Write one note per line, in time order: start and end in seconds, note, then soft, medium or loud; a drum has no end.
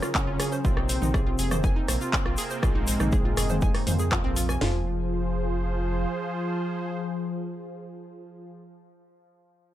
0.00 0.61 F#3 medium
0.00 0.61 C#4 medium
0.00 0.09 F4 medium
0.00 0.61 G#4 medium
0.00 0.61 A#4 medium
0.00 cross-stick medium
0.00 shaker medium
0.15 0.61 C#3 medium
0.15 0.25 C4 loud
0.15 0.61 C#4 medium
0.15 kick loud
0.15 clap loud
0.15 shaker soft
0.27 0.37 F#1 medium
0.27 0.37 F4 medium
0.40 0.46 G#4 loud
0.40 cross-stick medium
0.40 open hi-hat loud
0.40 shaker medium
0.52 0.59 C5 medium
0.52 shaker soft
0.64 0.98 A#1 loud
0.64 2.03 C3 medium
0.64 4.57 C3 medium
0.64 4.57 A#3 medium
0.64 4.57 C4 medium
0.64 2.03 C4 loud
0.64 0.71 F4 medium
0.64 kick loud
0.64 shaker soft
0.77 0.84 D#4 medium
0.77 cross-stick medium
0.89 0.93 C5 medium
0.89 open hi-hat loud
0.89 shaker medium
1.02 1.35 A#1 loud
1.02 1.12 D#4 medium
1.02 mid tom medium
1.02 shaker medium
1.14 1.24 G#4 medium
1.14 kick loud
1.14 cross-stick medium
1.14 shaker soft
1.27 1.37 F4 medium
1.39 1.72 F1 loud
1.39 1.46 G#4 loud
1.39 open hi-hat loud
1.39 shaker medium
1.51 1.58 C5 medium
1.51 cross-stick medium
1.51 mid tom medium
1.51 shaker medium
1.64 1.70 G#5 medium
1.64 kick loud
1.64 shaker soft
1.76 1.83 D#4 medium
1.88 1.98 A#1 medium
1.88 1.93 C5 medium
1.88 cross-stick medium
1.88 open hi-hat loud
1.88 shaker medium
2.01 2.08 F4 medium
2.01 shaker soft
2.13 2.23 C4 loud
2.13 kick loud
2.13 clap loud
2.13 shaker soft
2.26 2.36 A#1 medium
2.26 2.36 F4 medium
2.26 cross-stick medium
2.37 2.45 G#4 loud
2.37 open hi-hat loud
2.37 shaker medium
2.50 2.57 C5 medium
2.50 shaker soft
2.63 2.96 A#1 loud
2.63 4.02 G#2 medium
2.63 4.02 G#3 loud
2.63 2.70 F4 medium
2.63 kick loud
2.63 cross-stick medium
2.63 shaker soft
2.75 2.82 D#4 medium
2.87 2.92 C5 medium
2.87 open hi-hat loud
2.87 shaker loud
3.00 3.33 A#1 medium
3.00 3.10 D#4 medium
3.00 cross-stick medium
3.00 mid tom medium
3.00 shaker soft
3.12 3.23 G#4 medium
3.12 kick loud
3.12 shaker soft
3.25 3.35 F4 medium
3.37 3.70 F1 loud
3.37 3.44 G#4 loud
3.37 cross-stick soft
3.37 open hi-hat loud
3.37 shaker medium
3.49 3.56 C5 medium
3.49 mid tom medium
3.49 shaker soft
3.61 3.69 G#5 medium
3.61 kick loud
3.61 shaker soft
3.75 3.81 D#4 medium
3.75 cross-stick medium
3.75 open hi-hat medium
3.87 4.20 F2 medium
3.87 3.94 C5 medium
3.87 open hi-hat loud
3.87 mid tom medium
3.87 shaker medium
3.99 4.06 G#4 medium
3.99 shaker medium
4.12 4.57 F2 medium
4.12 4.57 F3 medium
4.12 4.18 F4 medium
4.12 kick loud
4.12 cross-stick medium
4.12 clap loud
4.12 shaker soft
4.24 4.57 A#1 medium
4.24 4.31 C4 loud
4.36 4.40 F4 medium
4.36 open hi-hat loud
4.36 shaker loud
4.49 4.56 G#5 medium
4.49 cross-stick medium
4.49 shaker medium
4.61 6.06 F1 loud
4.61 8.51 F3 loud
4.61 8.51 F3 medium
4.61 4.84 F4 loud
4.61 8.51 F4 medium
4.61 8.52 G#4 medium
4.61 8.52 C5 medium
4.61 snare loud
4.61 floor tom loud
4.61 open hi-hat medium